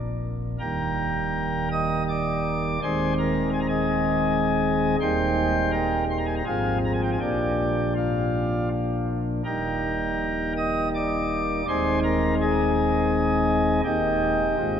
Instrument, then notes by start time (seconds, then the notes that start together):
pipe organ
Already playing: F1 A#1 F2 A#2
0.59 D#1 D#2 D#3 G3 A#3 A#4 G5 A#5
1.71 D#5 D#6
2.09 D5 D6
2.82 D#1 D#2 D#3 G#3 C4 C5 G#5 C6
3.19 A#4 A#5
3.53 G#5
3.60 A#5
3.68 G#4 D#5 G#5
5.00 D#1 D#2 G3 A#3 D#4 C5 G5 C6
5.72 A#4 G5 A#5
6.10 C6
6.18 A#5
6.26 G#5
6.37 A#5
6.45 G#1 G#2 F3 C4 F4 G#4 F5 G#5
6.85 A#5
6.93 G#5
7.03 G5
7.12 G#5
7.20 A#1 A#2 F3 A#3 D4 G4 D5 G5
7.95 F4 D5 F5
9.45 D#1 D#2 G3 A#3 D#4 A#4 G5 A#5
10.57 D#5 D#6
10.95 D5 D6
11.68 D#1 D#2 G#3 C4 D#4 C5 G#5 C6
12.04 A#4 A#5
12.41 G#4 D#5 G#5
13.84 D#1 D#2 A#3 D#4 G4 D#5 G5
14.58 G#1 G#2 G#3 C4 F4